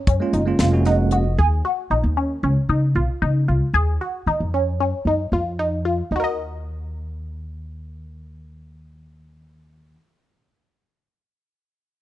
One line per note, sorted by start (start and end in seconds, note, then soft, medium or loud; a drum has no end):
0.07 0.18 F#2 medium
0.07 0.27 C#4 medium
0.07 kick medium
0.07 closed hi-hat medium
0.20 0.40 G#3 medium
0.20 0.40 A#3 medium
0.20 0.41 C#4 medium
0.20 0.41 F4 medium
0.33 0.56 F#1 medium
0.33 0.53 D#4 medium
0.33 closed hi-hat soft
0.46 0.56 G#3 medium
0.46 0.56 A#3 medium
0.46 0.57 C#4 medium
0.46 0.57 F4 medium
0.59 1.40 F1 medium
0.59 0.69 G#3 medium
0.59 0.70 A#3 medium
0.59 0.70 C#4 medium
0.59 0.79 F4 medium
0.59 0.70 F4 medium
0.59 snare medium
0.59 closed hi-hat medium
0.72 1.22 G#3 medium
0.72 1.22 A#3 medium
0.72 1.23 C#4 medium
0.72 1.23 F#4 medium
0.85 1.05 D#4 medium
0.85 1.10 F#5 medium
0.85 snare soft
0.85 closed hi-hat soft
1.11 1.31 F#4 medium
1.11 1.36 D#5 medium
1.11 closed hi-hat medium
1.38 1.61 D#2 medium
1.38 1.58 G#4 medium
1.65 1.84 F#4 medium
1.90 2.02 A#1 medium
1.90 2.10 D#4 medium
2.04 2.38 D#2 medium
2.17 2.36 C#4 medium
2.43 2.54 C#2 medium
2.43 2.63 C#4 medium
2.69 2.92 C#3 medium
2.69 2.89 D#4 medium
2.95 3.07 B1 medium
2.95 3.15 F4 medium
3.22 3.50 C#3 medium
3.22 3.41 D#4 medium
3.48 3.60 C#2 medium
3.48 3.68 F4 medium
3.74 3.97 D#2 medium
3.74 3.94 G#4 medium
4.01 4.20 F#4 medium
4.26 4.38 D#3 medium
4.26 4.47 D#4 medium
4.40 4.80 F2 medium
4.54 4.73 C#4 medium
4.80 4.91 F#2 medium
4.80 4.99 C#4 medium
5.05 5.28 F#2 medium
5.05 5.26 D#4 medium
5.32 6.00 F2 medium
5.32 5.52 F4 medium
5.59 5.78 D#4 medium
5.85 6.04 F4 medium
6.11 9.95 D#2 medium
6.11 9.95 D#4 medium
6.16 9.97 F#4 medium
6.16 9.99 A#4 medium
6.24 10.01 D#5 medium